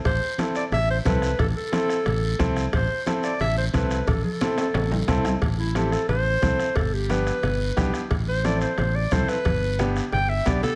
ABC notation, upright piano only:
X:1
M:4/4
L:1/8
Q:1/4=179
K:Am
V:1 name="Upright piano"
z2 [CEA] z3 [CEA] z | z2 [CEA] z3 [CEA] z | z2 [CEA] z3 [CEA] z | z2 [CEA] z3 [CEA] z |
z2 [CEA] z3 [CEA] z | z2 [B,DG] z3 [B,DG] z | z2 [CEA] z3 [CEA] z | z2 [B,DG] z3 [B,DG] z |]